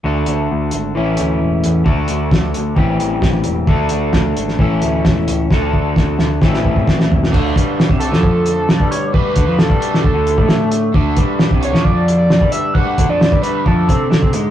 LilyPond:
<<
  \new Staff \with { instrumentName = "Analog synth lead" } { \time 4/4 \key d \major \tempo 4 = 132 r1 | r1 | r1 | r1 |
r4. a'2 cis''8 | b'4 a'4 a'4. r8 | r4. cis''8 d''8. d''8. e''8 | fis''8. d''8. b'8 a'4. r8 | }
  \new Staff \with { instrumentName = "Distorted electric guitar" } { \time 4/4 \key d \major r1 | r1 | r1 | r1 |
<d a d' fis'>4. <d a d' fis'>2~ <d a d' fis'>8 | <d a d' fis'>4. <d a d' fis'>2~ <d a d' fis'>8 | <d a d' fis'>4. <d a d' fis'>2~ <d a d' fis'>8 | <d a d' fis'>4. <d a d' fis'>2~ <d a d' fis'>8 | }
  \new Staff \with { instrumentName = "Clean electric guitar" } { \clef bass \time 4/4 \key d \major <d a d' fis'>2 <a, e a cis' e'>2 | <d a d' fis'>2 <a, e g c' g'>2 | <d a d' fis' a'>2 <a, e a cis' e' a'>2 | <d a d' fis' a'>2 <a, e g c' e' a'>2 |
d8 g8. c8 f4. g8.~ | g8 d16 f8 g8. d16 d8 a4~ a16 | d8 g8. c8 f4. g8.~ | g8 d16 f8 g8. f8 c'8 d'16 c'16 gis8 | }
  \new Staff \with { instrumentName = "Picked electric bass" } { \clef bass \time 4/4 \key d \major d,8 d,8 d,8 gis,,8 a,,8 d,8 e,,8 e,8 | d,8 d,8 d,8 d,8 a,,8 a,,8 a,,8 e,,8 | d,8 d,8 d,8 gis,,8 a,,8 d,8 e,,8 cis,8 | d,8 d,8 d,8 d,8 a,,8 a,,8 a,,8 e,,8 |
d,8 g,8. c,8 f,4. g,8.~ | g,8 d,16 f,8 g,8. d,16 d,8 a,4~ a,16 | d,8 g,8. c,8 f,4. g,8.~ | g,8 d,16 f,8 g,8. f,8 c8 d16 c16 gis,8 | }
  \new DrumStaff \with { instrumentName = "Drums" } \drummode { \time 4/4 r8 hh8 r8 hh8 r8 hh8 r8 hh8 | bd8 hh8 <bd sn>8 hh8 bd8 hh8 <bd sn>8 hh8 | bd8 hh8 <bd sn>8 hh16 sn16 bd8 hh8 <bd sn>8 hh8 | <bd sn>8 bd8 <bd sn>8 sn8 <bd sn>16 sn16 bd16 bd16 <bd sn>16 sn16 tomfh16 sn16 |
<cymc bd>8 <hh bd>8 sn16 bd16 hh16 sn16 bd8 hh8 sn16 bd16 hh8 | bd8 <hh bd>8 sn16 bd16 hh16 sn16 bd8 hh16 bd16 sn8 hh8 | bd8 <hh bd>8 sn16 bd16 hh16 sn16 bd8 hh8 sn16 bd16 hh8 | bd8 <hh bd>8 sn16 bd16 hh8 bd8 <hh bd>8 sn16 bd16 hh8 | }
>>